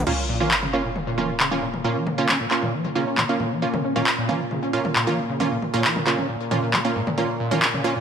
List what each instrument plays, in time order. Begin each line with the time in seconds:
0.07 acid bass A#2, synth drone A#2, supersaw synth A#3 C#4 F4, mid tom, crash, sub drop
0.29 acid bass A#2
0.40 acid bass F3, supersaw synth A#3 C#4 F4, mid tom
0.51 acid bass A#2, clap
0.63 acid bass C#3, mid tom
0.73 supersaw synth A#3 C#4 F4, acid bass C#4
0.85 acid bass A#2
0.96 mid tom
1.07 acid bass A#2
1.18 acid bass F3, supersaw synth A#3 C#4 F4, mid tom
1.29 acid bass A#2
1.40 acid bass C#3, clap
1.51 supersaw synth A#3 C#4 F4, acid bass C#4, mid tom
1.62 acid bass A#2
1.74 mid tom
1.84 acid bass A#2, supersaw synth A#3 C#4 F4
1.96 acid bass F3
2.07 acid bass A#2, mid tom
2.18 acid bass C#3, supersaw synth A#3 C#4 F4
2.29 acid bass C#4, clap, mid tom
2.40 acid bass A#2
2.51 supersaw synth A#3 C#4 F4, clap
2.62 acid bass A#2, mid tom
2.73 acid bass F3
2.85 acid bass A#2, mid tom
2.95 acid bass C#3, supersaw synth A#3 C#4 F4
3.07 acid bass C#4
3.18 acid bass A#2, clap, mid tom
3.29 supersaw synth A#3 C#4 F4
3.40 acid bass A#2, mid tom
3.51 acid bass F3
3.62 acid bass A#2, supersaw synth A#3 C#4 F4
3.74 acid bass C#3, mid tom
3.84 acid bass C#4
3.96 acid bass A#2, supersaw synth A#3 C#4 F4, mid tom
4.07 clap
4.18 acid bass A#2
4.29 acid bass F3, supersaw synth A#3 C#4 F4, mid tom
4.40 acid bass A#2
4.51 acid bass C#3, mid tom
4.62 acid bass C#4
4.73 acid bass A#2, supersaw synth A#3 C#4 F4
4.85 mid tom
4.96 acid bass A#2, clap
5.07 acid bass F3, supersaw synth A#3 C#4 F4, mid tom
5.18 acid bass A#2
5.29 acid bass C#3
5.40 supersaw synth A#3 C#4 F4, acid bass C#4, mid tom
5.51 acid bass A#2
5.62 mid tom
5.74 acid bass A#2, supersaw synth A#3 C#4 F4
5.84 acid bass F3, clap
5.96 acid bass A#2, mid tom
6.07 acid bass C#3, supersaw synth A#3 C#4 F4, clap
6.18 acid bass C#4, mid tom
6.29 acid bass A#2
6.51 acid bass A#2, supersaw synth A#3 C#4 F4, mid tom
6.62 acid bass A#2
6.73 acid bass A#3, clap, mid tom
6.85 supersaw synth A#3 C#4 F4, acid bass A#3
6.96 acid bass G#2
7.07 acid bass A#2, mid tom
7.18 acid bass A#2, supersaw synth A#3 C#4 F4, mid tom
7.40 acid bass A#2
7.51 acid bass F3, supersaw synth A#3 C#4 F4, mid tom
7.62 acid bass A#2, clap
7.74 acid bass C#3, mid tom
7.84 supersaw synth A#3 C#4 F4, acid bass C#4
7.96 acid bass A#2